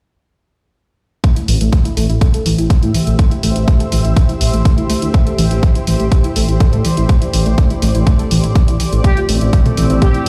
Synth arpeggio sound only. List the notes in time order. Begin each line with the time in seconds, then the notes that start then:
1.24 A3
1.36 E4
1.48 E3
1.61 A3
1.73 A3
1.85 E4
1.97 A3
2.10 E4
2.21 A3
2.34 A4
2.46 E3
2.58 E4
2.70 A3
2.83 E4
2.95 E3
3.07 A3
3.19 A3
3.31 E4
3.43 A3
3.56 E4
3.68 A3
3.80 A4
3.92 E3
4.05 E4
4.16 A3
4.29 E4
4.41 E3
4.53 A3
4.65 A3
4.78 E4
4.90 A3
5.02 E4
5.14 A3
5.26 A4
5.38 E3
5.51 E4
5.63 A3
5.75 E4
5.87 E3
6.00 A3
6.12 A3
6.24 E4
6.36 A3
6.49 E4
6.60 A3
6.73 A4
6.85 E3
6.97 E4
7.09 A3
7.22 E4
7.33 E3
7.46 A3
7.58 A3
7.70 E4
7.82 A3
7.95 E4
8.07 A3
8.19 A4
8.31 E3
8.43 E4
8.55 A3
8.68 E4
8.80 E3
8.92 A3
9.04 A3
9.17 F4
9.29 A3
9.41 E4
9.53 A3
9.66 A4
9.77 E3
9.90 E4
10.02 A3
10.14 E4